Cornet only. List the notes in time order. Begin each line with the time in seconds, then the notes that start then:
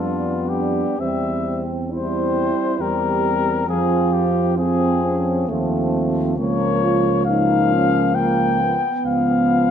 0.00 F4
0.49 G4
1.00 E5
1.92 C5
2.81 A#4
3.69 G#4
4.13 G4
4.59 G#4
6.38 C#5
7.26 F5
8.15 G5
9.06 F5